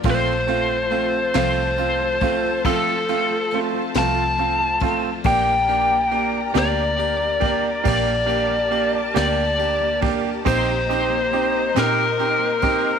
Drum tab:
RD |xxxxxx|xxxxxx|xxxxxx|xxxxxx|
SD |---o--|---o--|---o--|---o--|
BD |o----o|o----o|o----o|o----o|

RD |xxxxxx|
SD |---o--|
BD |o----o|